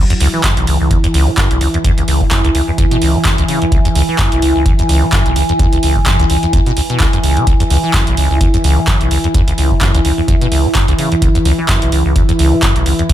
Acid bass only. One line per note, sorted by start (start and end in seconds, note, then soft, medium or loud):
0.10 0.14 E2 loud
0.20 0.28 C#2 loud
0.34 0.42 E3 medium
0.44 0.55 F#2 medium
0.57 0.66 B1 medium
0.67 0.78 C#2 medium
0.81 0.89 C#2 medium
0.91 0.98 E2 medium
1.04 1.07 E2 loud
1.14 1.29 C#2 loud
1.27 1.31 C#3 medium
1.37 1.48 F#2 medium
1.51 1.59 B1 medium
1.61 1.68 C#2 medium
1.74 1.78 E2 medium
1.84 1.92 E2 loud
1.98 2.03 C#2 medium
2.08 2.23 C#2 medium
2.21 2.25 C#3 medium
2.31 2.42 F#2 medium
2.45 2.50 C#2 loud
2.55 2.62 C#2 medium
2.68 2.71 E2 medium
2.78 2.86 E2 loud
2.92 2.97 B2 loud
3.02 3.16 C#2 medium
3.15 3.18 C#3 medium
3.25 3.36 F#2 medium
3.38 3.44 C#2 loud
3.49 3.60 C#3 medium
3.62 3.65 E2 medium
3.72 3.79 C#2 medium
3.85 3.89 E2 loud
3.96 4.03 C#2 loud
4.09 4.17 E3 medium
4.19 4.30 F#2 medium
4.32 4.41 B1 medium
4.42 4.53 C#2 medium
4.56 4.64 C#2 medium
4.66 4.73 E2 medium
4.79 4.82 E2 loud
4.89 5.04 C#2 loud
5.02 5.06 C#3 medium
5.13 5.24 F#2 medium
5.26 5.34 B1 medium
5.36 5.43 C#2 medium
5.49 5.53 E2 medium
5.59 5.67 E2 loud
5.73 5.78 C#2 medium
5.83 5.98 C#2 medium
5.96 5.99 C#3 medium
6.06 6.17 F#2 medium
6.20 6.25 C#2 loud
6.30 6.37 C#2 medium
6.43 6.46 E2 medium
6.53 6.61 E2 loud
6.66 6.72 B2 loud
6.77 6.81 C#2 medium
6.90 6.98 B2 medium
7.00 7.07 C#2 medium
7.13 7.19 F#2 medium
7.24 7.38 C#2 medium
7.37 7.45 C#3 loud
7.47 7.54 C#2 medium
7.60 7.64 E2 loud
7.70 7.78 C#2 loud
7.84 7.92 E3 medium
7.94 8.05 F#2 medium
8.07 8.16 B1 medium
8.17 8.28 C#2 medium
8.31 8.39 C#2 medium
8.41 8.48 E2 medium
8.54 8.57 E2 loud
8.64 8.79 C#2 loud
8.77 8.81 C#3 medium
8.88 8.99 F#2 medium
9.01 9.09 B1 medium
9.11 9.18 C#2 medium
9.24 9.28 E2 medium
9.35 9.42 E2 loud
9.48 9.53 C#2 medium
9.58 9.73 C#2 medium
9.71 9.75 C#3 medium
9.81 9.92 F#2 medium
9.95 10.00 C#2 loud
10.05 10.12 C#2 medium
10.18 10.21 E2 medium
10.28 10.36 E2 loud
10.41 10.47 B2 loud
10.52 10.66 C#2 medium
10.65 10.68 C#3 medium
10.75 10.86 F#2 medium
10.88 10.94 C#2 loud
10.99 11.09 C#3 medium
11.12 11.15 E2 medium
11.22 11.29 C#2 medium
11.35 11.39 E2 loud
11.45 11.53 C#2 loud
11.59 11.67 E3 medium
11.69 11.80 F#2 medium
11.82 11.90 B1 medium
11.92 12.03 C#2 medium
12.06 12.14 C#2 medium
12.16 12.23 E2 medium
12.29 12.32 E2 loud
12.39 12.54 C#2 loud
12.53 12.56 C#3 medium
12.63 12.74 F#2 medium
12.76 12.84 B1 medium
12.86 12.93 C#2 medium
12.99 13.03 E2 medium
13.10 13.13 E2 loud